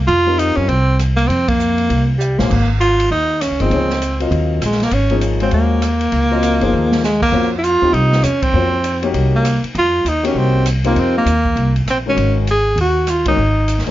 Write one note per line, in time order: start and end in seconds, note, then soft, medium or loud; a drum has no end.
0.07 0.54 F2 medium
0.07 0.40 F4 loud
0.07 ride soft
0.27 0.66 G3 medium
0.27 0.66 C4 medium
0.27 0.67 D#4 medium
0.27 0.67 F4 medium
0.27 0.67 A#4 medium
0.39 0.58 D#4 loud
0.39 hi-hat pedal soft
0.39 ride medium
0.56 0.68 F#2 medium
0.56 0.70 C#4 medium
0.68 1.26 C2 medium
0.68 0.99 C4 medium
0.68 ride soft
0.99 cross-stick medium
0.99 hi-hat pedal soft
0.99 ride medium
1.17 1.29 A#3 medium
1.17 ride soft
1.27 1.86 F2 medium
1.27 1.50 C4 medium
1.27 ride medium
1.48 2.09 A#3 medium
1.48 kick medium
1.48 ride medium
1.60 hi-hat pedal soft
1.78 ride soft
1.89 2.35 C2 medium
1.89 ride medium
2.18 2.41 G3 medium
2.18 hi-hat pedal medium
2.38 2.49 A#1 medium
2.38 2.49 D#3 medium
2.38 2.49 G#3 medium
2.38 2.69 A#3 medium
2.38 2.49 C#4 medium
2.38 2.49 F#4 medium
2.38 2.50 C5 medium
2.38 snare medium
2.50 3.08 G#1 medium
2.50 kick medium
2.50 crash medium
2.81 3.09 F4 medium
2.81 hi-hat pedal medium
2.81 ride medium
3.00 ride medium
3.11 3.48 D#2 medium
3.11 3.43 D#4 medium
3.41 3.63 C#4 medium
3.41 cross-stick medium
3.41 hi-hat pedal medium
3.41 ride medium
3.51 3.60 C#2 soft
3.60 3.70 G1 medium
3.60 3.70 F3 medium
3.60 3.70 A#3 medium
3.60 4.21 C4 medium
3.60 3.71 D#4 medium
3.60 3.72 G#4 soft
3.60 4.00 D#5 medium
3.60 ride soft
3.70 4.28 C#2 medium
3.70 3.88 F3 medium
3.70 3.88 A#3 soft
3.70 3.89 D#4 medium
3.70 3.89 G#4 medium
3.70 3.89 C#5 medium
3.70 ride soft
3.90 snare soft
4.02 hi-hat pedal medium
4.02 ride medium
4.20 4.60 F#3 medium
4.20 4.60 C4 medium
4.20 4.60 F4 medium
4.20 4.60 A#4 medium
4.20 4.60 D#5 medium
4.20 ride soft
4.31 4.59 D#2 medium
4.31 ride soft
4.61 4.89 A#1 medium
4.61 cross-stick medium
4.61 hi-hat pedal soft
4.61 ride medium
4.65 4.85 G#3 medium
4.72 snare soft
4.80 4.95 A#3 medium
4.80 snare soft
4.80 ride soft
4.91 5.49 G#1 medium
4.91 5.23 C#4 medium
4.91 ride medium
5.10 5.39 F3 medium
5.10 5.39 A#3 medium
5.10 5.39 D#4 medium
5.10 5.39 G#4 medium
5.10 5.40 C#5 medium
5.10 ride soft
5.21 hi-hat pedal soft
5.21 ride medium
5.40 5.80 G#3 medium
5.40 5.52 C4 medium
5.40 5.81 C#4 medium
5.40 5.81 F#4 medium
5.40 5.81 C5 medium
5.40 5.81 F5 medium
5.40 ride soft
5.51 6.09 D#2 medium
5.51 7.00 A#3 medium
5.51 ride soft
5.82 cross-stick medium
5.82 hi-hat pedal soft
5.82 ride medium
6.01 ride soft
6.12 6.58 C#2 medium
6.12 ride medium
6.31 6.60 F#3 medium
6.31 6.60 C4 medium
6.31 6.60 F4 medium
6.31 6.60 A#4 medium
6.31 6.60 D#5 medium
6.43 hi-hat pedal soft
6.43 ride medium
6.61 6.72 G1 medium
6.61 7.01 F3 medium
6.61 7.01 A#3 medium
6.61 7.01 D#4 medium
6.61 7.01 G#4 medium
6.61 7.02 C5 medium
6.61 ride soft
6.73 7.31 D#2 medium
6.92 snare medium
7.04 7.22 G#3 medium
7.04 snare medium
7.04 hi-hat pedal medium
7.22 7.50 A#3 medium
7.22 kick medium
7.22 crash medium
7.32 7.78 F2 medium
7.32 7.50 A#3 medium
7.32 7.50 C#4 medium
7.32 7.50 F4 medium
7.32 7.50 F#4 medium
7.32 7.51 C5 medium
7.58 7.65 E4 medium
7.64 7.95 F4 loud
7.64 hi-hat pedal soft
7.64 ride soft
7.82 7.92 D#2 medium
7.82 8.22 G3 medium
7.82 8.22 C4 medium
7.82 8.22 D#4 medium
7.82 8.22 F4 medium
7.82 8.22 G4 medium
7.93 8.21 C2 medium
7.93 8.25 D#4 medium
7.93 ride soft
8.12 snare soft
8.23 8.52 E2 medium
8.23 8.45 C#4 medium
8.23 cross-stick medium
8.23 hi-hat pedal medium
8.23 ride medium
8.42 9.04 C4 medium
8.42 kick medium
8.42 ride medium
8.53 9.11 F2 medium
8.53 8.71 A#3 soft
8.53 8.71 C#4 medium
8.53 8.71 F4 medium
8.53 8.72 F#4 soft
8.53 8.72 C5 medium
8.84 hi-hat pedal medium
8.84 ride medium
9.02 9.43 A#3 medium
9.02 9.43 C#4 medium
9.02 9.43 D#4 medium
9.02 9.42 F#4 medium
9.02 9.43 G4 medium
9.02 ride soft
9.14 9.60 C2 medium
9.14 ride medium
9.36 9.63 A#3 medium
9.45 cross-stick medium
9.45 hi-hat pedal soft
9.45 ride medium
9.63 muted upright bass stroke soft
9.63 ride soft
9.75 10.03 F2 medium
9.75 10.10 F4 medium
9.75 ride soft
10.05 10.33 D#2 medium
10.05 10.26 D#4 medium
10.05 hi-hat pedal soft
10.05 ride medium
10.23 10.63 A#3 medium
10.23 10.63 C#4 medium
10.23 10.39 C#4 medium
10.23 10.64 D#4 medium
10.23 10.63 F#4 medium
10.23 10.64 G4 medium
10.23 ride medium
10.34 10.92 C2 medium
10.34 10.67 C4 medium
10.66 cross-stick medium
10.66 hi-hat pedal medium
10.66 ride medium
10.84 11.24 G3 medium
10.84 11.01 A#3 medium
10.84 11.24 C4 medium
10.84 11.24 D#4 medium
10.84 11.25 F4 medium
10.84 11.25 A#4 medium
10.84 ride soft
10.96 11.24 F2 medium
10.96 11.17 C4 medium
10.96 ride medium
11.18 11.73 A#3 medium
11.25 11.54 D#2 medium
11.25 hi-hat pedal soft
11.25 ride medium
11.45 kick soft
11.56 11.84 C2 medium
11.56 ride soft
11.76 ride soft
11.86 12.14 A#1 medium
11.86 cross-stick medium
11.86 hi-hat pedal soft
11.86 ride medium
11.91 11.98 C4 medium
12.06 12.45 D#3 medium
12.06 12.45 G#3 medium
12.06 12.46 C#4 soft
12.06 12.35 C#4 medium
12.06 12.46 F#4 medium
12.06 12.46 A#4 medium
12.17 12.74 G#1 medium
12.17 ride medium
12.47 12.77 G#4 medium
12.47 hi-hat pedal soft
12.47 ride medium
12.76 13.34 D#2 medium
12.76 ride medium
12.81 13.11 F#4 medium
13.07 13.27 F4 medium
13.07 cross-stick medium
13.07 hi-hat pedal medium
13.07 ride medium
13.25 13.37 D#3 medium
13.25 13.37 G#3 medium
13.25 13.37 C#4 medium
13.25 13.83 D#4 medium
13.25 13.37 F#4 medium
13.25 13.37 A#4 medium
13.25 kick medium
13.25 ride medium
13.37 13.83 G#1 medium
13.68 hi-hat pedal soft
13.68 ride medium
13.78 snare soft
13.87 13.91 D#3 medium
13.87 13.91 G#3 medium
13.87 13.91 C#4 medium
13.87 muted upright bass stroke soft
13.87 ride soft